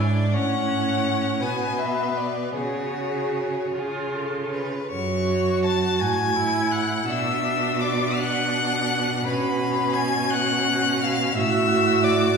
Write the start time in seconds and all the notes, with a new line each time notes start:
Already playing: G#2
0.00 D4 D5
0.34 A2 C#4 C#5 F#5
1.40 B2 B3 B4 G#5
1.79 E5
2.17 D5
2.56 C#3 F#4 G#4 C#5
3.75 C#3 F4 G#4
4.15 A4
4.53 B4
4.91 F#2 F#4 C#5 C#6
5.64 A5 A6
5.99 A2 G#5 G#6
6.36 E4
6.71 F#5 F#6
7.08 B2 D4 E5 E6
7.81 D5 D6
8.18 D4 F#5 F#6
9.26 B2 C#4 B4 B5
9.93 G#5 G#6
10.30 F#5 F#6
11.01 F5 F6
11.36 A2 F#4 E5 E6
12.04 D5 D6